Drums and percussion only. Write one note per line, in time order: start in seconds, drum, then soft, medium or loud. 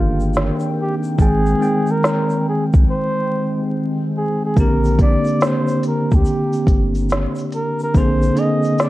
0.20 shaker soft
0.34 snare medium
0.34 shaker medium
0.60 shaker medium
1.03 shaker medium
1.19 kick loud
1.19 shaker medium
1.46 shaker medium
1.62 shaker soft
1.87 shaker soft
2.04 snare loud
2.04 shaker medium
2.30 shaker soft
2.73 kick loud
2.73 shaker soft
4.57 kick loud
4.57 shaker medium
4.84 shaker soft
4.99 kick medium
4.99 closed hi-hat medium
4.99 shaker soft
5.25 shaker soft
5.27 shaker soft
5.41 snare loud
5.41 shaker medium
5.42 shaker medium
5.68 shaker soft
5.83 closed hi-hat medium
5.83 shaker soft
6.11 kick medium
6.11 shaker soft
6.25 shaker medium
6.27 shaker medium
6.53 shaker medium
6.53 shaker soft
6.67 kick medium
6.67 closed hi-hat soft
6.67 shaker soft
6.95 shaker soft
7.10 snare medium
7.10 shaker medium
7.36 shaker medium
7.38 shaker medium
7.52 closed hi-hat medium
7.52 shaker soft
7.79 shaker soft
7.94 kick loud
7.94 shaker medium
8.22 shaker medium
8.22 shaker soft
8.37 closed hi-hat medium
8.37 shaker soft
8.63 shaker soft
8.65 shaker soft
8.78 snare loud
8.78 shaker medium
8.80 shaker medium